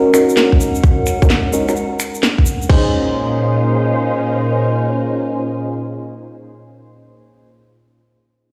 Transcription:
0.00 2.66 G#3 medium
0.00 0.12 C#4 medium
0.00 2.66 C#4 medium
0.00 2.68 C#4 medium
0.00 0.12 D#4 medium
0.00 2.66 D#4 medium
0.00 0.12 F#4 medium
0.00 2.66 F#4 medium
0.00 0.12 A#4 medium
0.00 0.82 A#4 medium
0.00 2.70 A#4 medium
0.00 0.13 C5 medium
0.00 2.70 F#5 medium
0.00 2.70 G#5 loud
0.14 1.18 C#4 medium
0.14 1.18 D#4 medium
0.14 1.18 F#4 medium
0.14 1.18 A#4 medium
0.14 finger snap medium
0.14 shaker medium
0.29 shaker soft
0.37 snare loud
0.37 shaker soft
0.52 kick medium
0.61 shaker medium
0.75 shaker soft
0.83 2.68 G#4 medium
0.83 kick loud
0.83 shaker soft
1.06 finger snap soft
1.06 shaker medium
1.22 1.27 C#4 medium
1.22 1.27 D#4 medium
1.22 1.27 F#4 medium
1.22 1.27 A#4 loud
1.22 kick loud
1.22 shaker soft
1.30 snare loud
1.30 shaker soft
1.53 1.66 C#4 medium
1.53 1.66 D#4 medium
1.53 1.66 F#4 medium
1.53 1.66 A#4 medium
1.53 shaker medium
1.68 1.74 C#4 medium
1.68 1.74 D#4 medium
1.68 1.74 F#4 medium
1.68 1.74 A#4 medium
1.68 finger snap soft
1.68 shaker medium
1.76 shaker soft
1.99 finger snap medium
1.99 shaker medium
2.14 shaker soft
2.23 snare loud
2.23 shaker soft
2.38 kick medium
2.46 shaker medium
2.62 shaker soft
2.69 7.18 A#2 medium
2.69 7.49 C#4 medium
2.69 7.18 C#4 medium
2.69 7.49 D#4 medium
2.69 7.18 D#4 medium
2.69 7.18 F4 medium
2.69 7.49 G#4 medium
2.69 7.18 G#4 medium
2.69 7.49 C5 medium
2.69 7.18 C5 medium
2.69 kick loud
2.69 crash medium
2.79 7.18 A#4 medium
2.87 7.18 C5 medium
2.92 7.18 D#5 medium
2.99 7.18 G#5 medium

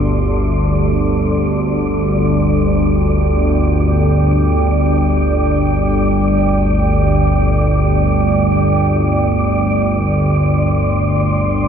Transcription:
0.00 11.68 G1 medium
0.00 11.68 D2 medium
0.00 11.68 G3 medium
0.00 11.68 D4 medium
0.00 11.68 A4 medium
0.00 11.68 D5 medium
0.00 1.98 C6 medium
1.93 9.72 G5 medium
9.69 11.68 C6 medium

